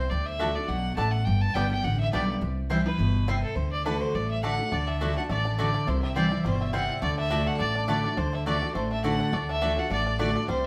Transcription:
Already playing: steel-string acoustic guitar C3, fiddle C5
0.10 upright bass D2, steel-string acoustic guitar D3, fiddle D5
0.26 fiddle E5
0.39 steel-string acoustic guitar D3 A3 D4 F#4, mandolin A3 F#4 D5 A5, five-string banjo A3 D4
0.55 steel-string acoustic guitar D4 F#4, fiddle D5
0.68 upright bass B1, steel-string acoustic guitar B2, fiddle F#5
0.96 upright bass A1, steel-string acoustic guitar A2, mandolin A3 F#4 D5 A5, five-string banjo A3 D4, fiddle A5
1.12 fiddle F#5
1.25 upright bass G1, steel-string acoustic guitar G2, fiddle G5
1.41 fiddle A5
1.55 upright bass G1, steel-string acoustic guitar D3 G3 B3 G4, five-string banjo G3 B3 D4, mandolin B3 G4 D5 G5, fiddle G5
1.71 steel-string acoustic guitar B3 G4, fiddle G5
1.84 upright bass A1, steel-string acoustic guitar D3, fiddle F#5
2.00 fiddle E5
2.12 upright bass B1, steel-string acoustic guitar D3 G3 B3 G4, five-string banjo G3 B3 D4, mandolin B3 G4 D5 G5, fiddle D5
2.41 upright bass C2, steel-string acoustic guitar C3
2.70 steel-string acoustic guitar E3 G3 C4 E4, five-string banjo G3 C4 E4, mandolin C4 E4 C5 G5
2.86 steel-string acoustic guitar C4 E4, fiddle B4
2.99 upright bass G1, steel-string acoustic guitar B2
3.28 steel-string acoustic guitar C3, five-string banjo G3 C4 E4, mandolin C4 E4 C5 G5
3.43 fiddle A4
3.56 upright bass D2, steel-string acoustic guitar D3, fiddle C5
3.73 fiddle D5
3.86 steel-string acoustic guitar D3 A3 D4 F#4, mandolin A3 F#4 D5 A5, five-string banjo A3 D4, fiddle B4
4.01 fiddle C5
4.14 upright bass A1, steel-string acoustic guitar A2, fiddle D5
4.31 fiddle E5
4.43 steel-string acoustic guitar D3 A3 D4 F#4, mandolin A3 F#4 D5 A5, five-string banjo A3 D4, fiddle F#5
4.59 steel-string acoustic guitar D4 F#4
4.72 upright bass D2, steel-string acoustic guitar D3, five-string banjo D4, fiddle D5
4.88 five-string banjo D4, fiddle E5
5.01 steel-string acoustic guitar D3 A3 D4 F#4, mandolin A3 F#4 D5 A5, five-string banjo A3
5.17 five-string banjo D4, steel-string acoustic guitar D4 F#4, fiddle F#5
5.29 upright bass A1, steel-string acoustic guitar E3, five-string banjo A3, fiddle D5
5.45 five-string banjo D4
5.58 steel-string acoustic guitar D3, five-string banjo A3, mandolin A3 F#4 D5 A5, fiddle D5
5.74 five-string banjo D4
5.87 upright bass C2, steel-string acoustic guitar C3, five-string banjo E4, fiddle C5
6.03 five-string banjo C4, fiddle E5
6.16 steel-string acoustic guitar E3 G3 C4 E4, five-string banjo G3, mandolin C4 E4 C5 G5, fiddle D5
6.32 steel-string acoustic guitar C4 E4, five-string banjo E4
6.45 upright bass G1, steel-string acoustic guitar B2, five-string banjo G3, fiddle C5
6.61 five-string banjo C4, fiddle E5
6.73 steel-string acoustic guitar C3, five-string banjo G3, mandolin C4 E4 C5 G5, fiddle F#5
6.89 five-string banjo E4
7.02 upright bass D2, steel-string acoustic guitar D3, five-string banjo A3, fiddle D5
7.18 five-string banjo D4, fiddle E5
7.30 steel-string acoustic guitar D3 A3 D4 F#4, mandolin A3 F#4 D5 A5, five-string banjo D4
7.46 five-string banjo A3, fiddle F#5
7.59 upright bass A1, steel-string acoustic guitar A2, five-string banjo D4, fiddle D5
7.75 five-string banjo D4
7.88 steel-string acoustic guitar D3 A3 D4 F#4, mandolin A3 F#4 D5 A5, five-string banjo A3, fiddle D5
8.04 five-string banjo D4, steel-string acoustic guitar D4 F#4
8.17 upright bass D2, steel-string acoustic guitar D3, five-string banjo D4, fiddle C5
8.33 five-string banjo D4, fiddle E5
8.46 steel-string acoustic guitar D3 A3 D4 F#4, five-string banjo A3, mandolin A3 F#4 D5 A5, fiddle D5
8.62 five-string banjo D4, steel-string acoustic guitar D4 F#4
8.75 upright bass A1, steel-string acoustic guitar A2, five-string banjo A3, fiddle C5
8.91 five-string banjo D4, fiddle E5
9.04 steel-string acoustic guitar D3 A3 D4 F#4, mandolin A3 F#4 D5 A5, five-string banjo A3, fiddle F#5
9.20 five-string banjo D4
9.33 upright bass D2, steel-string acoustic guitar D3, five-string banjo A3, fiddle D5
9.49 five-string banjo D4, fiddle E5
9.61 steel-string acoustic guitar D3 A3 D4 F#4, mandolin A3 F#4 D5 A5, five-string banjo D4
9.77 five-string banjo D4, steel-string acoustic guitar D4 F#4, fiddle F#5
9.90 upright bass A1, steel-string acoustic guitar A2, five-string banjo D4, fiddle D5
10.06 five-string banjo D4
10.19 steel-string acoustic guitar D3 A3 D4 F#4, mandolin A3 F#4 D5 A5, five-string banjo D4, fiddle D5
10.36 five-string banjo D4, steel-string acoustic guitar D4 F#4
10.48 upright bass C2, steel-string acoustic guitar C3, five-string banjo G3, fiddle C5

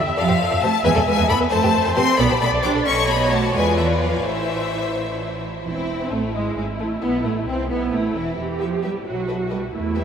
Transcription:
Already playing: viola section E5
0.07 double bass section E2, violin section G4 E5
0.17 double bass section F2, cello section F3, violin section A4 D5 F5
0.28 double bass section F2, violin section G4 C5
0.40 double bass section F2, violin section A4 D5
0.51 double bass section F2, violin section A4 D5
0.62 double bass section F2, cello section A3, violin section G4 C5 A5
0.84 double bass section E2, cello section G#3, violin section B4 E5 G#5
0.95 double bass section E2, violin section A4 D5
1.07 double bass section E2, cello section G#3, violin section B4 E5 G#5
1.17 double bass section E2, violin section B4 E5
1.29 double bass section E2, cello section B3, violin section A4 D5 B5
1.41 double bass section E2, violin section B4 E5
1.51 double bass section F2, cello section A3, violin section A4 C5 A5, viola section C5
1.63 double bass section F2, violin section G4 B4
1.73 double bass section F2, violin section A4 C5
1.84 double bass section F2, violin section A4 C5
1.96 double bass section F2, cello section C4, violin section G4 B4 C6
2.18 double bass section B1, cello section B3, violin section A4 D5 B5, viola section D5
2.30 double bass section B1, violin section G4 C5
2.41 double bass section B1, cello section B3, violin section A4 D5 B5
2.53 double bass section B1, violin section A4 D5
2.64 double bass section B1, cello section D4, violin section G4 C5 D6
2.75 double bass section B1, violin section A4 D5
2.86 double bass section B1, cello section C#4, violin section A4 D#5 C#6, viola section C#5
3.09 cello section B3, violin section B5
3.22 violin section F#4
3.32 cello section A3, violin section A5
3.55 double bass section E2, cello section G#3, violin section F4 D5 G#5, viola section B4
3.78 cello section E3, violin section E5
4.02 cello section F3, violin section F5
4.25 double bass section A1, cello section E3, violin section E4 C5 E5, viola section C5
5.60 cello section F3
5.65 double bass section E1, cello section E3, viola section C4, violin section E4
6.11 double bass section A1, violin section A3, cello section A3
6.34 double bass section G#1, violin section G#3, cello section G#3, viola section E4
6.56 double bass section G#1, violin section G#3, cello section G#3
6.80 double bass section A1, violin section A3, cello section A3
7.02 double bass section B1, violin section B3, cello section B3
7.25 double bass section A1, violin section A3, cello section A3
7.47 double bass section C2, violin section C4, cello section C4
7.69 double bass section B1, cello section B3, violin section B3, viola section E4
7.93 double bass section A1, cello section A3, violin section A3
8.15 double bass section E1, cello section E3, violin section E4
8.38 double bass section E2, cello section E3, viola section G4
8.60 cello section F3, violin section G4 B4 E5
8.82 cello section G3, violin section G4 B4 E5
9.06 double bass section B1, cello section F#3, viola section F#4
9.28 cello section F#3, violin section A4 B4 D#5
9.50 cello section G3, violin section A4 B4 D#5
9.73 double bass section E2, cello section A3, viola section E4
9.95 cello section G3, violin section G4 B4 E5

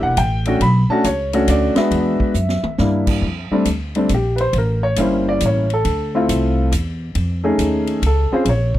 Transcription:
Already playing: upright piano A#3 D4 E4 G4
0.02 upright bass E1, upright piano F#5
0.17 upright bass A1, upright piano G5, kick, hi-hat pedal, ride
0.45 upright piano A3 C#4 D4 F#4, ride
0.60 upright bass B1, upright piano B5, kick, ride
0.89 upright piano A3 C#4 D4 F#4 A5, muted upright bass stroke
1.04 upright bass C#2, upright piano C#5, kick, hi-hat pedal, ride
1.33 upright piano A3 C#4 D4 F#4, ride
1.48 upright bass D2, upright piano D5, kick, hi-hat pedal, ride
1.75 upright piano G#3 B3 D4 F#4 E5, muted upright bass stroke, snare, ride
1.91 upright bass E2, kick, ride
2.19 muted upright bass stroke, kick
2.34 upright bass F#2, hi-hat pedal
2.49 snare
2.63 muted upright bass stroke, mid tom
2.78 upright bass G2, upright piano G3 A#3 D4 E4, snare
3.07 kick, crash
3.22 upright bass F2, kick
3.51 upright piano G3 A3 C4 D4, muted upright bass stroke
3.65 upright bass D2, kick, hi-hat pedal, ride
3.95 upright piano G3 A3 C4 D4, ride
4.09 upright bass A#1, kick, hi-hat pedal, ride
4.14 upright piano G4
4.36 upright piano B4, ride
4.41 upright piano C5
4.53 upright bass A1, kick, ride
4.58 upright piano A#4
4.83 upright piano C#5
4.96 upright bass G1, upright piano G3 A#3 C#4 E4, kick, hi-hat pedal, ride
5.01 upright piano C5
5.29 upright piano D5
5.40 upright bass A1, kick, hi-hat pedal, ride
5.46 upright piano C#5
5.70 upright piano A4, ride
5.85 upright bass D2, kick, ride
6.15 upright piano A3 C4 E4 F4
6.29 upright bass C2, kick, hi-hat pedal, ride
6.72 upright bass E2, kick, hi-hat pedal, ride
7.15 upright bass F2, kick, ride
7.44 upright piano A3 C#4 D#4 G#4
7.58 upright bass D#2, kick, hi-hat pedal, ride
7.87 ride
8.02 upright bass C#2, kick, ride
8.06 upright piano A4
8.31 upright piano C4 C#4 F4 G#4 C5, muted upright bass stroke
8.44 upright bass A#1, upright piano C5, kick, ride
8.49 upright piano C#5
8.74 kick

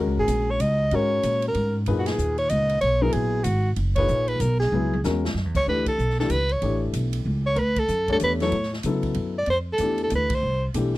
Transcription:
Already playing: upright piano G#3 C#4 A#4
0.00 upright piano F#4
0.07 upright bass C#2
0.18 upright bass G#1, soprano saxophone G#4
0.28 upright bass A#1, hi-hat pedal, ride
0.51 soprano saxophone C#5
0.60 upright bass C#2, soprano saxophone D#5, hi-hat pedal, ride
0.91 upright bass G#2, upright piano G#3 C#4 F#4 A#4, ride
0.95 soprano saxophone C#5
1.23 upright bass A#2, hi-hat pedal, ride
1.42 ride
1.48 soprano saxophone A#4
1.54 upright bass G#2, ride
1.86 upright bass F#2, upright piano A#2 D#4 G#4 B4, ride
1.99 soprano saxophone F#4
2.06 soprano saxophone G#4, snare, ride
2.18 upright bass D#2, hi-hat pedal
2.38 soprano saxophone C#5, ride
2.49 upright bass C#2, soprano saxophone D#5, hi-hat pedal, ride
2.69 ride
2.81 upright bass B1, soprano saxophone C#5, ride
3.02 upright piano F#3 B3 E4 G#4, soprano saxophone A#4
3.12 upright bass A#1, soprano saxophone G#4, ride
3.44 upright bass G#1, soprano saxophone F#4, hi-hat pedal, ride
3.76 upright bass F#1, ride
3.96 upright piano A#2 D#4 G#4 B4, soprano saxophone C#5, kick, ride
4.08 upright bass A#1, hi-hat pedal
4.28 soprano saxophone B4, ride
4.40 upright bass B1, soprano saxophone A#4, hi-hat pedal, ride
4.60 soprano saxophone G#4, snare
4.72 upright bass C#2, upright piano F#3 B3 E4 G#4, high tom
4.93 high tom
5.04 upright bass E2, upright piano G#3 C#4 F#4 A#4, snare, hi-hat pedal
5.25 snare
5.34 upright bass F#2, snare
5.45 upright bass E2
5.55 upright bass C#2, soprano saxophone C#5, kick, crash
5.66 upright bass D2, upright piano E3 A3 D4 G4, soprano saxophone B4
5.86 soprano saxophone A4, kick, ride
5.98 upright bass B1, hi-hat pedal
6.10 snare
6.19 upright piano E3 A3 D4 G4, soprano saxophone A4, snare
6.30 upright bass C#2, soprano saxophone B4, hi-hat pedal, ride
6.49 soprano saxophone C#5, ride
6.62 upright bass A1, upright piano E3 A3 D4 G4, ride
6.93 upright bass B1, hi-hat pedal, ride
7.13 ride
7.25 upright bass C#2
7.46 soprano saxophone C#5
7.56 upright bass D2, soprano saxophone A#4 B4, ride
7.76 soprano saxophone A4, kick, ride
7.88 upright bass F#2, hi-hat pedal
8.08 upright piano A3 D4 G4 C#5, kick, ride
8.13 soprano saxophone A4
8.20 upright bass E2, hi-hat pedal, ride
8.24 soprano saxophone B4
8.40 upright piano F#3 B3 E4 A4, soprano saxophone C#5, snare, ride
8.52 upright bass A2, ride
8.63 snare
8.73 snare
8.83 upright bass C#3, upright piano F#3 B3 E4 A4, hi-hat pedal, ride
9.03 kick, ride
9.14 upright bass F#2, ride
9.38 soprano saxophone D5
9.46 upright bass F2, ride
9.50 soprano saxophone C5
9.73 soprano saxophone A4
9.78 upright bass E2, upright piano E3 A3 D4 G4, hi-hat pedal, ride
9.98 ride
10.04 soprano saxophone A4
10.10 upright bass D2, hi-hat pedal, ride
10.16 soprano saxophone B4
10.30 kick, ride
10.35 soprano saxophone C5
10.43 upright bass C2
10.74 upright bass B1, upright piano E3 A3 D4 G4, hi-hat pedal, ride
10.94 snare

